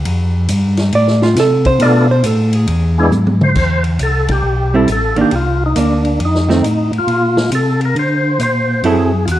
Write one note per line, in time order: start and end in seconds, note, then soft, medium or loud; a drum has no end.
0.05 0.48 F2 medium
0.05 ride medium
0.48 0.92 G2 loud
0.48 hi-hat pedal medium
0.48 ride medium
0.77 snare soft
0.77 ride soft
0.92 1.36 A2 medium
0.92 1.22 D5 medium
0.92 ride medium
1.07 snare soft
1.22 1.37 F4 medium
1.22 snare medium
1.35 1.79 C3 medium
1.35 snare soft
1.35 hi-hat pedal medium
1.35 ride medium
1.40 1.67 A4 medium
1.65 1.82 C5 loud
1.65 kick medium
1.65 ride soft
1.80 2.23 B2 medium
1.80 2.07 A3 medium
1.80 2.07 B3 medium
1.80 2.07 D4 medium
1.80 2.07 F4 medium
1.80 2.08 A4 medium
1.80 2.10 D5 loud
1.80 ride medium
2.11 2.26 C5 medium
2.24 2.67 A2 medium
2.24 2.55 A4 medium
2.24 hi-hat pedal medium
2.24 ride medium
2.53 3.13 G#4 loud
2.53 ride medium
2.67 3.11 E2 loud
2.67 ride medium
2.98 3.11 G#3 medium
2.98 3.12 B3 medium
2.98 3.12 D4 medium
2.98 3.12 E4 medium
2.98 3.12 G#4 medium
3.12 3.55 G#2 loud
3.12 hi-hat pedal medium
3.12 high tom soft
3.27 high tom medium
3.41 3.83 C5 loud
3.41 mid tom medium
3.55 3.99 E2 medium
3.55 kick medium
3.55 crash medium
3.84 ride soft
3.99 4.43 C2 medium
3.99 4.31 A4 medium
3.99 hi-hat pedal medium
3.99 ride medium
4.28 4.76 G4 medium
4.28 kick medium
4.28 ride medium
4.44 4.87 B1 medium
4.74 4.87 G3 medium
4.74 4.87 C4 medium
4.74 4.88 E4 medium
4.74 4.90 A4 medium
4.88 5.15 A1 medium
4.88 hi-hat pedal soft
4.88 ride medium
4.92 5.17 A4 medium
5.16 5.24 A1 soft
5.16 5.30 D#3 medium
5.16 5.31 A#3 medium
5.16 5.31 D4 medium
5.16 ride soft
5.21 5.35 G4 medium
5.31 5.75 C2 medium
5.31 ride medium
5.36 5.64 F4 medium
5.66 5.79 D#4 medium
5.76 6.19 D2 medium
5.76 6.20 A#3 medium
5.76 6.21 D4 medium
5.76 hi-hat pedal medium
5.76 ride medium
5.80 6.19 D4 medium
6.05 ride soft
6.20 6.63 F2 medium
6.20 ride medium
6.25 6.92 D#4 medium
6.35 snare soft
6.49 6.62 D#3 medium
6.49 6.63 A3 medium
6.49 6.63 C4 medium
6.49 snare soft
6.63 6.91 A2 medium
6.63 hi-hat pedal medium
6.63 ride medium
6.92 7.00 A2 soft
6.92 ride soft
6.98 7.51 F4 loud
7.07 7.50 A#2 medium
7.07 ride soft
7.37 snare medium
7.52 7.95 C3 medium
7.52 7.81 A4 medium
7.52 hi-hat pedal soft
7.52 ride medium
7.81 ride soft
7.85 7.97 A#4 medium
7.96 8.39 D3 medium
7.96 8.42 C5 medium
7.96 ride soft
8.39 8.82 A#2 medium
8.39 8.87 C5 loud
8.39 hi-hat pedal medium
8.39 ride medium
8.83 9.26 F#2 medium
8.83 9.10 F#3 medium
8.83 9.11 C4 medium
8.83 9.11 E4 medium
8.83 9.26 G#4 loud
8.83 9.11 A4 medium
8.83 ride medium
9.25 9.39 E2 medium
9.25 9.29 F4 medium
9.25 hi-hat pedal medium
9.25 ride medium
9.32 9.39 F#4 medium